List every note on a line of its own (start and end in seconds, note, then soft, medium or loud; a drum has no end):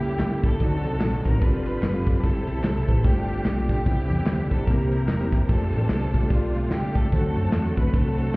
0.00 0.14 C#2 loud
0.00 0.58 G3 medium
0.00 0.17 A#3 medium
0.00 0.57 A#3 medium
0.00 0.58 C#4 medium
0.00 0.17 E4 medium
0.00 0.57 E4 medium
0.00 0.58 E4 medium
0.00 0.17 G4 medium
0.00 0.45 G4 loud
0.00 0.58 G4 medium
0.00 0.17 A4 medium
0.00 0.17 E5 medium
0.00 ride medium
0.00 tambourine medium
0.19 0.55 C#2 loud
0.19 snare loud
0.19 clap loud
0.19 ride medium
0.19 tambourine loud
0.31 0.54 A#3 medium
0.31 0.53 E4 medium
0.31 0.54 G4 medium
0.31 0.54 A4 medium
0.31 0.54 E5 medium
0.44 0.59 A4 loud
0.44 kick loud
0.44 ride medium
0.44 tambourine medium
0.59 0.81 D2 loud
0.59 1.21 D3 medium
0.59 0.67 D#3 medium
0.59 0.86 C4 medium
0.59 1.38 C4 medium
0.59 1.41 C4 medium
0.59 1.40 D4 medium
0.59 0.86 D#4 medium
0.59 1.41 D#4 medium
0.59 0.86 F#4 medium
0.59 1.38 F#4 medium
0.59 1.21 A4 loud
0.59 0.86 A4 medium
0.59 1.41 A4 medium
0.59 0.87 D5 medium
0.59 kick loud
0.59 ride medium
0.59 tambourine medium
0.66 1.43 F#3 medium
0.84 0.98 C2 medium
0.84 ride medium
0.84 tambourine medium
0.92 1.16 C4 medium
0.92 1.16 D#4 medium
0.92 1.16 F#4 medium
0.92 1.16 A4 medium
0.92 1.16 D#5 medium
1.01 1.21 A#1 medium
1.01 snare loud
1.01 clap loud
1.01 ride medium
1.01 tambourine loud
1.24 1.39 A1 medium
1.24 1.37 C4 medium
1.24 1.38 D#4 medium
1.24 1.38 F#4 medium
1.24 1.37 A4 medium
1.24 1.42 A#4 loud
1.24 1.38 C5 medium
1.24 kick medium
1.24 snare soft
1.24 ride medium
1.24 tambourine medium
1.41 1.76 G1 loud
1.41 2.02 G2 medium
1.41 2.22 G3 medium
1.41 1.47 B3 medium
1.41 1.48 B3 medium
1.41 2.21 D4 medium
1.41 2.20 D4 medium
1.41 2.22 F4 medium
1.41 1.80 F4 medium
1.41 2.20 F4 medium
1.41 1.80 G4 medium
1.41 1.80 A4 medium
1.41 2.22 A4 medium
1.41 2.24 B4 loud
1.41 1.80 D5 loud
1.41 kick loud
1.41 ride medium
1.41 tambourine medium
1.47 1.83 C4 medium
1.47 2.22 C4 medium
1.66 ride medium
1.66 tambourine medium
1.82 2.17 F#1 loud
1.82 snare loud
1.82 clap loud
1.82 ride medium
1.82 tambourine loud
1.94 2.17 C4 loud
1.94 2.17 F4 medium
1.94 2.17 G4 medium
1.94 2.17 A4 medium
1.94 2.17 F5 loud
2.07 kick loud
2.07 snare soft
2.07 ride medium
2.07 tambourine medium
2.23 2.44 G1 loud
2.23 2.84 G2 medium
2.23 3.03 G3 medium
2.23 3.03 C4 medium
2.23 3.01 C4 medium
2.23 3.03 E4 medium
2.23 2.49 E4 medium
2.23 3.01 E4 medium
2.23 2.50 G4 medium
2.23 3.05 A4 loud
2.23 2.49 C5 medium
2.23 kick loud
2.23 ride medium
2.23 tambourine medium
2.47 2.61 B1 loud
2.47 ride medium
2.47 tambourine medium
2.56 2.79 E4 medium
2.56 2.79 G4 medium
2.56 2.79 C5 medium
2.64 2.84 C2 loud
2.64 snare loud
2.64 clap loud
2.64 ride medium
2.64 tambourine loud
2.88 3.02 A1 medium
2.88 3.01 E4 medium
2.88 3.01 G4 medium
2.88 3.01 B4 loud
2.88 kick medium
2.88 ride medium
2.88 tambourine medium
3.04 3.39 G1 loud
3.04 3.65 G2 medium
3.04 3.84 D3 medium
3.04 3.84 G3 medium
3.04 3.84 A3 medium
3.04 3.43 A3 medium
3.04 3.84 C4 medium
3.04 3.83 C4 medium
3.04 3.43 D4 medium
3.04 3.83 D4 medium
3.04 3.84 F4 medium
3.04 3.43 F4 medium
3.04 3.43 G4 medium
3.04 3.69 G4 loud
3.04 3.43 C5 medium
3.04 kick loud
3.04 ride medium
3.04 tambourine medium
3.28 ride medium
3.28 tambourine medium
3.45 3.80 B1 medium
3.45 snare loud
3.45 clap loud
3.45 ride medium
3.45 tambourine loud
3.58 3.80 A3 medium
3.58 3.80 D4 medium
3.58 3.80 F4 medium
3.58 3.80 G4 medium
3.58 3.80 D5 medium
3.69 3.85 G4 medium
3.69 kick loud
3.69 snare soft
3.69 ride medium
3.69 tambourine soft
3.85 4.07 C2 loud
3.85 4.66 C3 medium
3.85 4.47 C3 medium
3.85 4.66 D3 medium
3.85 4.66 G3 medium
3.85 4.66 B3 medium
3.85 4.12 B3 medium
3.85 4.64 B3 medium
3.85 4.12 D4 medium
3.85 3.92 D#4 medium
3.85 4.12 E4 medium
3.85 4.64 E4 medium
3.85 4.12 G4 medium
3.85 4.48 G4 loud
3.85 4.12 C5 medium
3.85 kick loud
3.85 ride medium
3.85 tambourine medium
3.91 4.68 E4 medium
4.10 4.24 E2 medium
4.10 ride medium
4.10 tambourine medium
4.18 4.42 B3 medium
4.18 4.42 D4 medium
4.18 4.42 E4 medium
4.18 4.42 G4 medium
4.18 4.42 C5 medium
4.26 4.47 D2 loud
4.26 snare loud
4.26 clap loud
4.26 ride medium
4.26 tambourine loud
4.51 4.65 B1 loud
4.51 4.63 B3 medium
4.51 4.63 D4 medium
4.51 4.63 E4 medium
4.51 4.63 G4 medium
4.51 4.68 A4 loud
4.51 4.63 C5 medium
4.51 kick medium
4.51 snare soft
4.51 ride medium
4.51 tambourine medium
4.67 5.02 C2 loud
4.67 5.29 C3 medium
4.67 5.48 E3 medium
4.67 5.48 G3 medium
4.67 5.07 A#3 medium
4.67 5.48 A#3 medium
4.67 5.06 C4 medium
4.67 5.48 C4 medium
4.67 5.45 E4 medium
4.67 5.07 E4 medium
4.67 5.45 G4 medium
4.67 5.07 G4 medium
4.67 5.48 G4 medium
4.67 5.49 A#4 loud
4.67 5.07 C5 medium
4.67 kick loud
4.67 ride medium
4.67 tambourine medium
4.92 ride medium
4.92 tambourine medium
5.08 5.43 E1 medium
5.08 snare loud
5.08 clap loud
5.08 ride medium
5.08 tambourine loud
5.21 5.43 A#3 medium
5.21 5.43 C4 medium
5.21 5.43 E4 medium
5.21 5.43 G4 medium
5.21 5.43 C5 loud
5.32 kick loud
5.32 snare soft
5.32 ride medium
5.32 tambourine medium
5.49 5.70 F1 loud
5.49 7.09 G3 medium
5.49 5.75 A3 medium
5.49 7.09 A3 medium
5.49 7.09 C4 medium
5.49 6.27 C4 medium
5.49 5.75 D4 medium
5.49 7.09 D4 medium
5.49 6.27 D4 medium
5.49 5.75 F4 medium
5.49 7.09 F4 medium
5.49 5.75 G4 medium
5.49 6.31 A4 loud
5.49 5.75 C5 medium
5.49 kick loud
5.49 ride medium
5.49 tambourine medium
5.73 5.88 A1 loud
5.73 ride medium
5.73 tambourine medium
5.81 6.04 A3 medium
5.81 6.04 D4 medium
5.81 6.05 F4 medium
5.81 6.05 G4 medium
5.81 6.05 B4 medium
5.89 6.24 C2 loud
5.89 snare loud
5.89 clap loud
5.89 ride medium
5.89 tambourine loud
6.13 6.26 A3 medium
6.13 6.26 D4 medium
6.13 6.26 F4 medium
6.13 6.26 G4 medium
6.13 6.26 C5 medium
6.13 kick loud
6.13 ride medium
6.13 tambourine medium
6.29 6.65 B1 loud
6.29 6.69 A3 medium
6.29 7.09 A3 medium
6.29 6.69 D4 medium
6.29 7.08 D4 medium
6.29 6.69 F4 medium
6.29 6.72 F4 medium
6.29 6.69 G4 medium
6.29 6.69 D5 medium
6.29 kick loud
6.29 ride medium
6.29 tambourine medium
6.54 ride medium
6.54 tambourine medium
6.71 7.06 C#2 medium
6.71 6.95 G4 loud
6.71 snare loud
6.71 clap loud
6.71 ride medium
6.71 tambourine loud
6.83 7.06 A3 medium
6.83 7.06 D4 medium
6.83 7.06 F4 medium
6.83 7.06 G4 medium
6.83 7.06 A4 loud
6.95 7.12 A4 loud
6.95 kick loud
6.95 snare soft
6.95 ride medium
6.95 tambourine medium
7.12 7.33 D2 loud
7.12 7.73 D3 medium
7.12 8.36 D3 medium
7.12 8.36 F#3 medium
7.12 7.38 A3 medium
7.12 8.36 A3 medium
7.12 7.38 C4 medium
7.12 7.90 C4 medium
7.12 8.36 C4 medium
7.12 7.38 D4 medium
7.12 7.38 F#4 medium
7.12 7.91 F#4 medium
7.12 8.36 F#4 medium
7.12 7.73 A4 loud
7.12 7.38 C5 medium
7.12 kick loud
7.12 ride medium
7.12 tambourine medium
7.36 7.51 F#2 loud
7.36 ride medium
7.36 tambourine medium
7.44 7.68 A3 medium
7.44 7.68 C4 medium
7.44 7.68 D4 medium
7.44 7.68 F#4 medium
7.44 7.68 C5 medium
7.52 7.73 E2 medium
7.52 snare loud
7.52 clap loud
7.52 ride medium
7.52 tambourine loud
7.77 7.91 D2 loud
7.77 7.89 A3 medium
7.77 7.90 C4 medium
7.77 7.90 D4 medium
7.77 7.90 F#4 medium
7.77 7.90 A4 medium
7.77 7.95 B4 loud
7.77 kick loud
7.77 snare soft
7.77 ride medium
7.77 tambourine medium
7.93 8.28 C2 loud
7.93 8.32 A3 medium
7.93 8.32 C4 medium
7.93 8.36 C4 medium
7.93 8.32 D4 medium
7.93 8.32 F#4 medium
7.93 8.36 F#4 medium
7.93 8.36 A4 loud
7.93 7.99 B4 medium
7.93 kick loud
7.93 ride medium
7.93 tambourine medium
7.99 8.35 C5 medium
8.18 ride medium
8.18 tambourine medium